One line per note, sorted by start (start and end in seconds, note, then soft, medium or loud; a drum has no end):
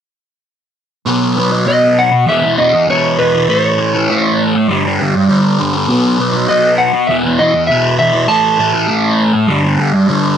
1.07 1.35 B2 medium
1.07 1.37 F#3 loud
1.07 1.38 B3 loud
1.36 1.65 B2 medium
1.36 1.54 F#3 medium
1.36 1.51 B3 medium
1.52 1.66 F#3 soft
1.52 1.68 B3 medium
1.66 2.25 B2 medium
1.66 2.11 F#3 medium
1.66 2.10 B3 medium
1.66 1.99 D#5 loud
1.99 2.28 F#5 loud
2.12 muted distorted electric guitar stroke medium
2.27 2.57 E2 medium
2.27 2.44 B2 medium
2.27 2.41 E3 medium
2.27 2.58 E5 medium
2.42 2.59 B2 medium
2.42 2.60 E3 medium
2.58 2.87 E2 medium
2.58 2.73 B2 medium
2.58 2.72 E3 medium
2.58 2.89 D#5 medium
2.73 muted distorted electric guitar stroke soft
2.88 3.17 E2 medium
2.88 3.19 B2 medium
2.88 3.20 E3 loud
2.88 3.20 C#5 medium
3.18 3.46 E2 medium
3.18 3.36 B2 medium
3.18 3.33 E3 medium
3.18 3.46 B4 medium
3.34 3.48 B2 medium
3.34 3.47 E3 medium
3.48 3.77 A2 medium
3.48 3.79 E3 loud
3.48 3.80 A3 loud
3.48 4.65 C#5 medium
3.78 4.08 A2 medium
3.78 3.96 E3 medium
3.78 3.94 A3 medium
3.95 4.09 E3 medium
3.95 4.10 A3 medium
4.09 4.67 A2 medium
4.09 4.55 E3 medium
4.09 4.54 A3 medium
4.55 muted distorted electric guitar stroke medium
4.68 4.98 G2 loud
4.68 4.86 D3 medium
4.68 4.83 G3 loud
4.84 5.00 D3 medium
4.84 5.01 G3 medium
4.99 5.27 G2 medium
4.99 5.14 D3 medium
4.99 5.13 G3 medium
5.14 muted distorted electric guitar stroke soft
5.28 5.57 G2 medium
5.28 5.59 D3 loud
5.28 5.60 G3 loud
5.58 5.87 G2 medium
5.58 5.75 D3 medium
5.58 5.73 G3 medium
5.74 5.88 D3 medium
5.74 5.87 G3 medium
5.88 6.16 B2 medium
5.88 6.18 F#3 loud
5.88 6.19 B3 loud
6.17 6.46 B2 medium
6.17 6.35 F#3 medium
6.17 6.31 B3 medium
6.32 6.47 F#3 medium
6.32 6.49 B3 medium
6.47 7.06 B2 medium
6.47 6.93 F#3 medium
6.47 6.92 B3 loud
6.47 6.78 D#5 medium
6.78 7.09 F#5 medium
6.93 muted distorted electric guitar stroke soft
7.07 7.38 E2 medium
7.07 7.25 B2 loud
7.07 7.15 E5 medium
7.12 7.22 E3 loud
7.23 7.39 B2 medium
7.23 7.41 E3 medium
7.39 7.69 E2 medium
7.39 7.54 B2 medium
7.39 7.53 E3 medium
7.39 7.67 D#5 medium
7.54 muted distorted electric guitar stroke medium
7.67 7.98 E2 medium
7.67 8.00 B2 medium
7.67 7.96 E5 medium
7.72 8.01 E3 loud
7.99 8.28 E2 medium
7.99 8.15 B2 medium
7.99 8.12 E3 medium
7.99 8.30 E5 medium
8.13 8.28 B2 medium
8.13 8.27 E3 medium
8.28 8.56 A2 medium
8.28 8.58 E3 loud
8.28 8.59 A3 medium
8.28 9.15 A5 loud
8.57 8.86 A2 medium
8.57 8.74 E3 medium
8.57 8.71 A3 medium
8.72 8.88 E3 medium
8.72 8.89 A3 medium
8.87 9.47 A2 medium
8.87 9.33 E3 medium
8.87 9.32 A3 medium
9.34 muted distorted electric guitar stroke soft
9.48 9.77 G2 medium
9.48 9.65 D3 medium
9.48 9.62 G3 loud
9.63 9.79 D3 medium
9.63 9.80 G3 medium
9.78 10.07 G2 medium
9.78 9.93 D3 medium
9.78 9.93 G3 medium
9.94 muted distorted electric guitar stroke soft
10.08 10.37 G2 medium
10.08 10.37 D3 medium
10.08 10.37 G3 medium